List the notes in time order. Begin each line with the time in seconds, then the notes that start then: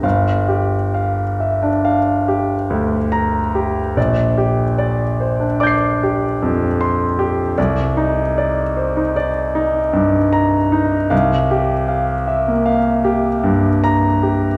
0.03 G1 F5
0.48 G4
0.94 F5
1.40 E5
1.63 D4
1.85 F5
2.28 G4
2.70 D2
3.12 A#5
3.55 G4
3.97 A#1 D5
4.38 G4
4.78 D5
5.20 C5
5.40 D4
5.60 D5 D6 G6
5.67 C7
6.03 G4
6.42 F2
6.81 C6
7.19 G4
7.58 C2 D5
7.97 D#4
8.38 D5
8.77 C5
8.97 D#4
9.16 D5
9.55 D#4
9.93 G2
10.33 A#5
10.72 D#4
11.10 C2 F5
11.51 G4
11.88 F5
12.27 E5
12.48 A#3
12.66 F5
13.04 G4
13.44 G2
13.84 A#5
14.23 G4